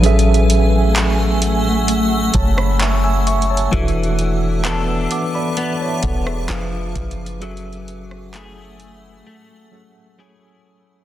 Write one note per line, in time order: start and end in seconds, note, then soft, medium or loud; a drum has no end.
0.00 2.30 A1 loud
0.00 1.57 F#3 medium
0.00 3.69 A3 medium
0.00 1.58 C#4 medium
0.00 3.69 F#5 medium
0.00 3.68 G#5 medium
0.00 3.69 E6 medium
0.00 closed hi-hat soft
0.04 1.59 G#4 medium
0.04 1.59 A4 medium
0.04 1.59 E5 loud
0.19 closed hi-hat soft
0.34 closed hi-hat soft
0.50 closed hi-hat medium
0.96 clap loud
0.96 closed hi-hat medium
1.42 closed hi-hat medium
1.88 closed hi-hat medium
2.34 3.69 F#1 loud
2.34 2.57 C#5 medium
2.34 2.56 A5 medium
2.34 kick loud
2.34 closed hi-hat medium
2.57 2.79 B5 medium
2.57 cross-stick loud
2.80 3.03 E5 medium
2.80 3.03 C#6 medium
2.80 clap loud
2.80 closed hi-hat medium
3.04 3.26 G#5 medium
3.04 3.25 E6 medium
3.27 3.49 E5 medium
3.27 3.49 C#6 medium
3.27 closed hi-hat medium
3.42 closed hi-hat medium
3.50 3.94 C#5 medium
3.50 3.94 A5 medium
3.57 closed hi-hat medium
3.71 5.07 E1 loud
3.71 5.27 E3 medium
3.71 6.49 E3 medium
3.71 5.27 D4 medium
3.71 5.28 F#4 medium
3.71 5.12 A4 medium
3.71 7.38 B4 medium
3.71 6.47 E5 medium
3.71 5.12 E5 loud
3.71 6.46 A5 medium
3.71 7.38 D6 medium
3.71 kick loud
3.71 closed hi-hat soft
3.88 closed hi-hat soft
4.03 closed hi-hat soft
4.19 closed hi-hat medium
4.65 5.56 B3 medium
4.65 6.59 D4 medium
4.65 6.59 A4 medium
4.65 clap loud
4.65 closed hi-hat medium
5.11 5.34 F#5 medium
5.11 5.33 D6 medium
5.11 closed hi-hat medium
5.35 5.79 D5 medium
5.35 5.78 B5 medium
5.57 6.59 B3 medium
5.57 closed hi-hat medium
5.81 6.03 C#5 medium
5.81 6.03 A5 medium
6.03 6.48 E1 loud
6.03 6.26 A4 medium
6.03 6.25 F#5 medium
6.03 kick loud
6.03 closed hi-hat medium
6.27 6.49 G#4 medium
6.27 6.70 E5 medium
6.27 cross-stick loud
6.48 6.94 F1 loud
6.48 7.26 F3 medium
6.48 7.41 F3 medium
6.48 7.27 D4 medium
6.48 7.27 G#4 medium
6.48 7.28 B4 medium
6.48 7.28 F5 medium
6.48 clap loud
6.48 closed hi-hat medium
6.95 9.22 F#1 loud
6.95 kick loud
6.95 closed hi-hat medium
7.11 closed hi-hat medium
7.26 closed hi-hat medium
7.40 8.96 F#3 medium
7.40 11.04 F#3 medium
7.40 11.04 A3 medium
7.40 8.96 C#4 medium
7.40 8.97 G#4 medium
7.40 8.97 A4 medium
7.40 11.04 F#5 medium
7.40 9.24 G#5 medium
7.40 11.04 E6 loud
7.40 closed hi-hat soft
7.44 8.98 E5 loud
7.57 closed hi-hat soft
7.73 closed hi-hat soft
7.88 closed hi-hat medium
8.11 cross-stick medium
8.34 9.26 A3 medium
8.34 10.19 E4 medium
8.34 10.19 G#4 medium
8.34 clap loud
8.34 closed hi-hat medium
8.80 closed hi-hat medium
9.27 10.18 A3 medium
9.27 11.04 G#5 medium
9.71 10.11 F#3 medium
9.71 10.11 C#4 medium
9.71 10.12 G#4 medium
9.71 10.12 A4 medium
9.71 10.12 F#5 loud
10.18 10.96 F#3 medium
10.18 11.04 A3 medium
10.18 10.96 C#4 medium
10.18 11.04 E4 medium
10.18 10.96 G#4 medium
10.18 11.04 G#4 medium
10.18 10.97 A4 medium
10.18 10.97 C#5 medium